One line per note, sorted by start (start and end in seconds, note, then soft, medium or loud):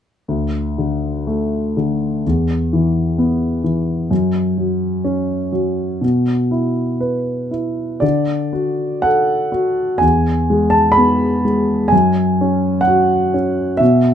0.28 2.21 D2 soft
0.78 1.75 D3 soft
1.27 2.22 A3 soft
1.77 2.24 D3 soft
2.26 4.08 E2 soft
2.73 3.62 E3 soft
3.18 4.08 B3 soft
3.64 4.09 E3 soft
4.11 5.99 F#2 soft
4.58 5.51 F#3 soft
5.05 5.99 C#4 soft
5.52 6.00 F#3 soft
6.01 7.99 B2 soft
6.51 7.50 E4 soft
7.00 8.00 B4 soft
7.51 8.01 E4 soft
8.00 9.98 D3 soft
8.00 9.06 D5 soft
8.53 9.51 F#4 soft
9.02 9.99 A4 soft
9.02 9.98 F#5 medium
9.52 10.00 F#4 soft
9.98 11.88 E2 soft
9.98 10.75 G#5 medium
10.50 11.43 G#3 soft
10.70 10.97 A5 medium
10.92 11.92 B5 medium
10.97 11.89 B3 soft
11.45 11.91 G#3 soft
11.88 12.82 G#5 medium
11.92 13.77 F#2 soft
12.41 13.33 C#4 soft
12.81 13.73 F#5 medium
12.87 13.78 F#4 soft
13.34 13.79 C#4 soft
13.77 14.14 B2 soft
13.77 14.14 E5 medium